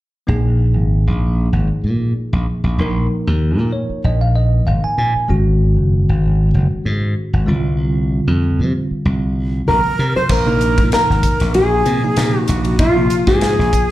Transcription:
0.27 A#1 F3 A#3 D#4 G#4
0.76 G#1
1.07 A#1
1.53 G#1
1.70 muted slap bass stroke
1.84 A#2
2.33 A#1
2.64 A#1
2.78 A#1 F3 A#3 D#4 A#4
3.27 D#2
3.58 A#2
3.73 C#5
3.90 muted slap bass stroke
4.04 A#1 D#5
4.21 F5
4.36 D#5
4.67 G#1 F5
4.84 G#5, muted slap bass stroke
4.98 A#2 G#5
5.15 muted slap bass stroke
5.28 G#1 D#3 G#3 C#4 F#4
5.77 F#1
6.09 G#1
6.54 F#1
6.85 G#2
7.33 G#1
7.46 C2 D3 G3 C4 F4
8.27 F2
8.59 C3
8.91 muted slap bass stroke
9.05 C2
9.68 A#1 A#4
9.99 C3
10.16 C5, muted slap bass stroke
10.29 A#1 A#4, kick, crash
10.46 C3 F3 A#3 D#4
10.61 hi-hat pedal, ride
10.78 A#2, kick, ride
10.92 A#4, snare, ride
11.10 G#1, snare
11.23 kick, hi-hat pedal, ride
11.40 A#1, snare, ride
11.54 G#4, ride
11.85 A#2 C3 F3 A#3 C4, hi-hat pedal, ride
12.03 C3 F3 A#3 D#4
12.16 A#2 C3 F3 A#3 D#4, snare, ride
12.39 F#4
12.43 F#4
12.48 A#1, hi-hat pedal, ride
12.65 ride
12.79 A#1 F4, kick, ride
12.97 C3 F3 A#3 F4
13.10 hi-hat pedal, ride
13.27 G#2 G#4, kick, snare
13.41 snare, ride
13.59 A#1, snare
13.73 kick, hi-hat pedal, ride

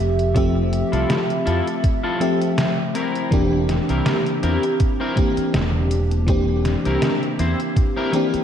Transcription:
Already playing: F1 F3 A3 C4 G4 E5
0.19 closed hi-hat
0.35 F3 A3 C4 G4 E5, muted clean electric guitar stroke, kick, closed hi-hat
0.55 muted clean electric guitar stroke
0.72 muted clean electric guitar stroke, closed hi-hat
0.92 C2 E4 F4 A4, closed hi-hat
1.10 snare, closed hi-hat
1.30 closed hi-hat
1.46 F2 E4 F4 A4, closed hi-hat
1.67 closed hi-hat
1.83 muted clean electric guitar stroke, kick, closed hi-hat
2.03 E4 F4 A4
2.20 F3 A3 C4 G4 E5, closed hi-hat
2.41 muted clean electric guitar stroke, closed hi-hat
2.58 snare, closed hi-hat
2.95 C4 E4 A#4, closed hi-hat
3.15 closed hi-hat
3.31 E1 E3 A#3 C4 D4 G4, kick, closed hi-hat
3.52 muted clean electric guitar stroke
3.69 muted clean electric guitar stroke, snare, closed hi-hat
3.89 C2 C4 E4 A#4, closed hi-hat
4.06 snare, closed hi-hat
4.26 closed hi-hat
4.43 E2 C4 E4 A#4, closed hi-hat
4.63 closed hi-hat
4.80 muted clean electric guitar stroke, kick, closed hi-hat
5.00 C4 E4 A#4
5.15 E3 A#3 C4 D4 G4, kick, closed hi-hat
5.37 muted clean electric guitar stroke, muted fretless electric bass stroke, closed hi-hat
5.54 E1, snare, closed hi-hat
5.91 closed hi-hat
6.11 closed hi-hat
6.26 E3 A#3 C4 D4 G4, muted clean electric guitar stroke, kick, closed hi-hat
6.49 muted clean electric guitar stroke
6.65 muted clean electric guitar stroke, snare, closed hi-hat
6.85 C2 C4 E4 A#4, closed hi-hat
7.02 snare, closed hi-hat
7.23 closed hi-hat
7.39 E2 C4 E4 C5, closed hi-hat
7.60 closed hi-hat
7.76 muted clean electric guitar stroke, kick, closed hi-hat
7.96 C4 E4 A#4
8.12 E3 A#3 C4 D4 G4, closed hi-hat
8.34 muted clean electric guitar stroke, muted fretless electric bass stroke, closed hi-hat

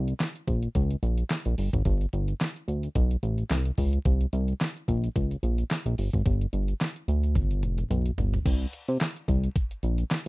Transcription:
Already playing: C2
0.08 closed hi-hat
0.20 snare, clap, closed hi-hat
0.36 closed hi-hat
0.48 A#1, kick, closed hi-hat
0.63 closed hi-hat
0.75 C#2, kick, closed hi-hat
0.91 closed hi-hat
1.03 A#1, closed hi-hat
1.18 closed hi-hat
1.30 snare, clap, closed hi-hat
1.45 A#1, closed hi-hat
1.58 G1, open hi-hat
1.73 G#1, kick, closed hi-hat
1.85 G1, kick, closed hi-hat
2.01 closed hi-hat
2.13 G1, closed hi-hat
2.28 closed hi-hat
2.41 snare, clap, closed hi-hat
2.56 closed hi-hat
2.68 D2, closed hi-hat
2.83 closed hi-hat
2.95 B1, kick, closed hi-hat
3.11 closed hi-hat
3.23 A1, closed hi-hat
3.38 closed hi-hat
3.50 C2, snare, clap, closed hi-hat
3.65 closed hi-hat
3.78 C#2, kick, open hi-hat
3.93 closed hi-hat
4.05 C2, kick, closed hi-hat
4.21 closed hi-hat
4.33 C2, closed hi-hat
4.48 closed hi-hat
4.61 snare, clap, closed hi-hat
4.77 closed hi-hat
4.88 A#1, kick, closed hi-hat
5.04 closed hi-hat
5.16 C#2, kick, closed hi-hat
5.31 closed hi-hat
5.43 A#1, closed hi-hat
5.58 closed hi-hat
5.71 snare, clap, closed hi-hat
5.86 A#1, closed hi-hat
5.98 G1, open hi-hat
6.13 G#1, kick, closed hi-hat
6.26 G1, kick, closed hi-hat
6.41 closed hi-hat
6.53 G1, closed hi-hat
6.68 closed hi-hat
6.81 snare, clap, closed hi-hat
6.96 closed hi-hat
7.08 D2, closed hi-hat
7.23 closed hi-hat
7.35 G1, kick, closed hi-hat, high tom
7.51 closed hi-hat
7.63 F1, closed hi-hat, mid tom
7.78 closed hi-hat, mid tom
7.90 B1, closed hi-hat, mid tom
8.06 closed hi-hat
8.18 G1, closed hi-hat, floor tom
8.34 closed hi-hat, floor tom
8.46 C2, kick, closed hi-hat, crash
8.61 closed hi-hat
8.73 closed hi-hat
8.88 C3, closed hi-hat
9.01 snare, clap, closed hi-hat
9.16 closed hi-hat
9.28 C2, kick, closed hi-hat
9.44 closed hi-hat
9.56 kick, closed hi-hat
9.71 closed hi-hat
9.83 A#1, closed hi-hat
9.98 closed hi-hat
10.11 snare, clap, closed hi-hat

